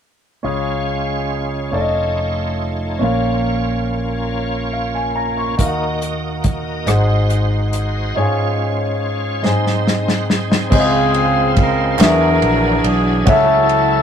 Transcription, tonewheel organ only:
0.44 1.73 G#3 soft
0.44 1.73 C#4 soft
0.44 1.73 F4 soft
0.44 1.73 C#5 medium
1.74 3.02 A3 soft
1.74 3.02 D#4 soft
1.74 3.01 F4 soft
1.74 3.01 C#5 soft
3.02 5.55 A#3 soft
3.02 5.55 C#4 soft
3.02 5.55 F4 soft
3.02 5.55 C#5 medium
5.60 6.88 A#3 soft
5.60 6.87 D#4 soft
5.60 6.86 F#4 soft
5.60 6.88 D#5 soft
6.87 8.15 G#3 medium
6.87 8.16 D#4 soft
6.87 8.16 F#4 soft
6.87 8.16 C5 medium
8.15 9.42 G#3 medium
8.15 9.43 C#4 soft
8.15 9.43 F4 soft
8.15 9.44 C#5 medium
9.43 10.71 G#3 medium
9.43 10.71 C4 medium
9.43 10.71 D#4 medium
9.43 10.70 C5 medium
9.87 10.06 D#5 medium
10.08 10.28 F#5 medium
10.29 10.69 G#5 medium
10.71 11.99 C#3 medium
10.71 12.00 G#3 medium
10.71 11.99 F4 medium
10.71 11.99 C5 medium
11.99 13.25 F#3 medium
11.99 13.27 D4 medium
11.99 13.26 E4 medium
11.99 13.27 G#4 medium
13.27 14.02 F#3 medium
13.27 14.02 C#4 medium
13.27 14.02 E4 medium
13.27 14.02 A4 medium

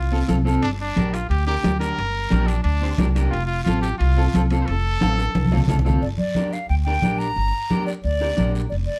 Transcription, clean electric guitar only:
0.12 0.18 C4 medium
0.12 0.18 F4 medium
0.12 0.19 A4 medium
0.28 0.34 C4 medium
0.28 0.35 F4 medium
0.28 0.35 A4 medium
0.45 0.63 C4 medium
0.45 0.63 F4 medium
0.45 0.63 A4 medium
0.96 1.14 D4 medium
0.96 1.15 G4 medium
0.96 1.14 A#4 medium
1.47 1.53 D4 medium
1.47 1.53 G4 soft
1.47 1.53 A#4 medium
1.63 1.70 D4 medium
1.63 1.70 G4 medium
1.63 1.70 A#4 medium
1.80 1.98 D4 medium
1.80 1.98 G4 soft
1.80 1.99 A#4 medium
2.30 2.49 D4 medium
2.30 2.49 G4 medium
2.30 2.49 A#4 medium
2.82 2.88 D4 medium
2.82 2.88 G4 soft
2.82 2.88 C5 medium
2.99 3.05 D4 medium
2.99 3.05 G4 medium
2.99 3.05 A#4 medium
3.15 3.32 D4 medium
3.15 3.33 G4 medium
3.15 3.33 A#4 medium
3.67 3.84 C4 medium
3.67 3.85 F4 medium
3.67 3.85 A4 medium
4.17 4.23 C4 medium
4.17 4.23 F4 medium
4.17 4.23 A4 medium
4.34 4.40 C4 medium
4.34 4.40 F4 medium
4.34 4.41 A4 medium
4.51 4.69 C4 medium
4.51 4.69 F4 medium
4.51 4.69 A4 medium
5.01 5.19 C4 medium
5.01 5.19 F4 medium
5.01 5.19 A4 medium
5.52 5.58 C4 medium
5.52 5.58 F4 medium
5.52 5.58 A4 medium
5.68 5.75 C4 medium
5.68 5.75 F4 medium
5.68 5.75 A4 medium
5.85 6.02 C4 medium
5.85 6.02 F4 medium
5.85 6.03 A4 medium
6.36 6.54 D4 medium
6.36 6.54 G4 medium
6.36 6.54 A#4 medium
6.87 6.93 D4 medium
6.87 6.93 G4 soft
6.87 6.93 A#4 medium
7.03 7.27 D4 medium
7.03 7.27 G4 medium
7.03 7.27 A#4 medium
7.70 7.88 D4 medium
7.70 7.88 G4 medium
7.70 7.89 A#4 medium
8.21 8.27 D4 medium
8.21 8.27 G4 medium
8.21 8.27 A#4 medium
8.37 8.61 D4 medium
8.37 8.61 G4 soft
8.37 8.62 A#4 medium

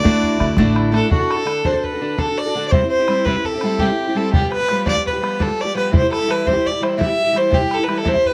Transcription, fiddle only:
0.00 0.73 D5 loud
0.94 1.10 A4 medium
1.12 1.32 F#4 medium
1.31 1.67 A4 medium
1.66 1.76 C5 medium
1.76 1.85 C5 medium
1.83 2.20 B4 medium
2.19 2.39 A4 medium
2.37 2.67 D5 medium
2.68 2.89 C5 medium
2.68 2.73 D5 medium
2.89 3.26 C5 loud
3.25 3.47 B4 medium
3.45 3.81 A4 medium
3.79 4.18 G4 medium
4.17 4.32 A4 medium
4.33 4.50 G4 medium
4.52 4.84 B4 loud
4.88 5.04 D5 loud
5.07 5.43 B4 medium
5.42 5.62 A4 medium
5.61 5.76 D5 loud
5.77 5.92 B4 medium
5.95 6.11 C5 medium
6.12 6.32 A4 loud
6.30 6.49 B4 medium
6.47 6.68 C5 medium
6.67 6.84 D5 medium
6.83 6.99 C5 medium
7.00 7.39 E5 loud
7.37 7.56 C5 medium
7.54 7.75 G4 medium
7.74 7.85 A4 loud
7.84 7.99 B4 medium
7.98 8.10 A4 medium
8.08 8.28 C5 loud
8.27 8.34 B4 medium

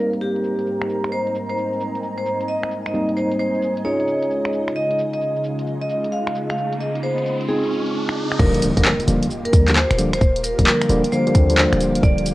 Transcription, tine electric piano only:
0.00 2.92 G3 medium
0.00 2.92 A#3 medium
0.00 2.92 C4 medium
0.00 2.92 D#4 medium
2.94 3.83 G3 medium
2.94 3.83 A#3 medium
2.94 3.83 C4 medium
2.94 3.83 D#4 medium
3.85 7.47 C#4 medium
3.85 7.47 D#4 medium
3.85 7.47 F4 medium
3.85 7.47 G#4 medium
7.49 8.38 C4 medium
7.49 8.38 D#4 medium
7.49 8.38 F4 medium
7.49 8.38 G#4 medium
8.39 8.71 D3 loud
8.39 8.71 F3 loud
8.39 8.71 G3 medium
8.39 8.71 A#3 loud
8.77 8.90 D3 loud
8.77 8.90 F3 medium
8.77 8.90 G3 medium
8.77 8.90 A#3 loud
9.08 9.25 D3 medium
9.08 9.25 F3 medium
9.08 9.25 G3 medium
9.08 9.25 A#3 loud
9.53 9.64 D3 medium
9.53 9.64 F3 medium
9.53 9.64 G3 medium
9.53 9.64 A#3 medium
9.68 9.75 D3 medium
9.68 9.75 F3 medium
9.68 9.75 G3 medium
9.68 9.75 A#3 medium
9.98 10.11 D3 medium
9.98 10.11 F3 medium
9.98 10.11 G3 medium
9.98 10.11 A#3 loud
10.59 10.87 D3 medium
10.59 10.87 F3 medium
10.59 10.87 G3 medium
10.59 10.87 A#3 medium
10.89 11.02 D3 medium
10.89 11.02 F3 medium
10.89 11.02 G3 medium
10.89 11.02 A#3 loud
11.12 11.25 D3 medium
11.12 11.25 F3 medium
11.12 11.25 G3 medium
11.12 11.25 A#3 medium
11.27 11.33 D3 medium
11.27 11.33 F3 medium
11.27 11.33 G3 medium
11.27 11.33 A#3 medium
11.35 11.48 D3 medium
11.35 11.48 F3 medium
11.35 11.48 G3 medium
11.35 11.48 C4 medium
11.50 12.34 D3 medium
11.50 12.34 F3 medium
11.50 12.34 G3 medium
11.50 12.34 A#3 medium

